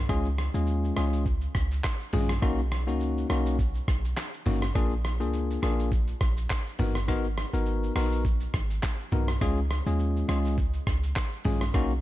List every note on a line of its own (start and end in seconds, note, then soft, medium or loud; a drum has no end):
0.09 0.49 C#2 loud
0.09 0.27 G#3 medium
0.09 0.27 C#4 medium
0.09 0.27 F4 medium
0.09 0.27 G#4 loud
0.09 kick loud
0.09 cross-stick medium
0.09 shaker medium
0.25 shaker medium
0.38 cross-stick medium
0.38 shaker medium
0.54 0.92 D#2 loud
0.54 0.93 G#3 medium
0.54 0.94 C#4 medium
0.54 0.94 F4 medium
0.54 0.94 G#4 medium
0.54 shaker medium
0.67 shaker medium
0.84 shaker medium
0.96 1.48 C#2 medium
0.96 1.24 G#3 medium
0.96 1.24 C#4 medium
0.96 1.24 F4 medium
0.96 1.24 G#4 medium
0.96 cross-stick loud
0.96 shaker medium
1.13 shaker medium
1.26 kick medium
1.26 shaker medium
1.41 shaker medium
1.55 1.81 C#2 medium
1.55 kick medium
1.55 cross-stick medium
1.55 shaker medium
1.71 shaker loud
1.84 kick loud
1.84 cross-stick loud
1.84 clap loud
1.84 shaker medium
2.01 shaker medium
2.13 2.39 A#1 loud
2.13 2.31 G#3 medium
2.13 2.31 C#4 medium
2.13 2.31 F4 medium
2.13 2.31 G#4 medium
2.13 mid tom loud
2.13 open hi-hat medium
2.13 shaker medium
2.29 cross-stick loud
2.29 shaker medium
2.42 2.89 B1 loud
2.42 2.60 A#3 medium
2.42 2.60 C#4 medium
2.42 2.60 D#4 medium
2.42 2.60 F#4 loud
2.42 kick loud
2.42 cross-stick medium
2.42 shaker medium
2.58 shaker medium
2.72 cross-stick medium
2.72 shaker medium
2.87 3.25 C#2 medium
2.87 3.26 A#3 medium
2.87 3.27 C#4 medium
2.87 3.27 D#4 medium
2.87 3.27 F#4 medium
2.87 shaker medium
3.00 shaker medium
3.18 shaker medium
3.29 3.81 B1 medium
3.29 3.57 A#3 medium
3.29 3.57 C#4 medium
3.29 3.57 D#4 medium
3.29 3.57 F#4 medium
3.29 cross-stick loud
3.29 shaker medium
3.46 shaker medium
3.59 kick loud
3.59 shaker medium
3.74 shaker medium
3.88 4.14 B1 medium
3.88 kick medium
3.88 cross-stick medium
3.88 shaker medium
4.04 shaker medium
4.17 cross-stick loud
4.17 clap loud
4.17 shaker medium
4.34 shaker medium
4.46 4.72 G#1 medium
4.46 4.64 A#3 medium
4.46 4.64 C#4 medium
4.46 4.64 D#4 medium
4.46 4.64 F#4 medium
4.46 mid tom loud
4.46 open hi-hat medium
4.46 shaker medium
4.62 cross-stick medium
4.62 shaker medium
4.75 5.22 A#1 loud
4.75 4.93 A#3 medium
4.75 4.93 D4 medium
4.75 4.93 F4 medium
4.75 4.93 G#4 loud
4.75 kick loud
4.75 cross-stick medium
4.75 shaker medium
4.91 shaker soft
5.05 cross-stick medium
5.05 shaker medium
5.20 5.58 C#2 loud
5.20 5.59 A#3 medium
5.20 5.60 D4 medium
5.20 5.60 F4 medium
5.20 5.60 G#4 medium
5.20 shaker medium
5.33 shaker medium
5.51 shaker medium
5.62 6.14 A#1 loud
5.62 5.90 A#3 medium
5.62 5.90 D4 medium
5.62 5.90 F4 medium
5.62 5.90 G#4 medium
5.62 cross-stick loud
5.62 shaker medium
5.79 shaker medium
5.92 kick loud
5.92 shaker medium
6.07 shaker medium
6.21 6.47 A#1 medium
6.21 kick medium
6.21 cross-stick medium
6.21 shaker medium
6.37 shaker medium
6.50 kick medium
6.50 cross-stick loud
6.50 clap loud
6.50 shaker medium
6.67 shaker medium
6.79 7.45 G#1 loud
6.79 6.97 B3 medium
6.79 6.97 D#4 medium
6.79 6.97 F#4 medium
6.79 6.97 A#4 medium
6.79 mid tom loud
6.79 open hi-hat medium
6.79 shaker medium
6.95 cross-stick medium
6.95 shaker medium
7.08 7.26 B3 medium
7.08 7.26 D#4 medium
7.08 7.26 F#4 medium
7.08 7.26 A#4 loud
7.08 kick loud
7.08 cross-stick medium
7.08 shaker medium
7.24 shaker medium
7.38 cross-stick medium
7.38 shaker medium
7.53 7.91 G#1 medium
7.53 7.93 B3 medium
7.53 7.93 D#4 medium
7.53 7.93 F#4 medium
7.53 7.93 A#4 medium
7.53 shaker medium
7.66 shaker medium
7.83 shaker medium
7.95 8.47 A#1 loud
7.95 8.23 B3 medium
7.95 8.23 D#4 medium
7.95 8.23 F#4 medium
7.95 8.23 A#4 medium
7.95 cross-stick loud
7.95 open hi-hat medium
7.95 shaker medium
8.12 shaker medium
8.25 kick loud
8.25 shaker medium
8.40 shaker medium
8.54 8.80 G#1 medium
8.54 kick medium
8.54 cross-stick medium
8.54 shaker medium
8.70 shaker medium
8.83 kick loud
8.83 cross-stick loud
8.83 clap loud
8.83 shaker medium
8.99 shaker medium
9.12 9.38 B1 medium
9.12 9.30 B3 medium
9.12 9.30 D#4 medium
9.12 9.30 F#4 medium
9.12 9.30 A#4 medium
9.12 mid tom loud
9.12 shaker medium
9.28 cross-stick medium
9.28 shaker medium
9.41 9.81 C#2 loud
9.41 9.59 G#3 medium
9.41 9.59 C#4 medium
9.41 9.59 F4 medium
9.41 9.59 G#4 loud
9.41 kick loud
9.41 cross-stick medium
9.41 shaker medium
9.57 shaker medium
9.71 cross-stick medium
9.71 shaker medium
9.86 10.24 D#2 loud
9.86 10.25 G#3 medium
9.86 10.26 C#4 medium
9.86 10.26 F4 medium
9.86 10.26 G#4 medium
9.86 shaker medium
9.99 shaker medium
10.17 shaker medium
10.29 10.80 C#2 medium
10.29 10.56 G#3 medium
10.29 10.56 C#4 medium
10.29 10.56 F4 medium
10.29 10.56 G#4 medium
10.29 cross-stick loud
10.29 shaker medium
10.45 shaker medium
10.58 kick loud
10.58 shaker medium
10.73 shaker medium
10.87 11.13 C#2 medium
10.87 kick medium
10.87 cross-stick medium
10.87 shaker medium
11.03 shaker medium
11.16 kick medium
11.16 cross-stick loud
11.16 clap loud
11.16 shaker medium
11.32 shaker medium
11.45 11.71 A#1 loud
11.45 11.63 G#3 medium
11.45 11.63 C#4 medium
11.45 11.63 F4 medium
11.45 11.63 G#4 medium
11.45 mid tom loud
11.45 open hi-hat medium
11.45 shaker medium
11.61 cross-stick loud
11.61 shaker medium
11.74 12.01 B1 loud
11.74 11.92 A#3 medium
11.74 11.92 C#4 medium
11.74 11.92 D#4 medium
11.74 11.92 F#4 loud
11.74 kick loud
11.74 cross-stick medium
11.74 shaker medium
11.90 shaker soft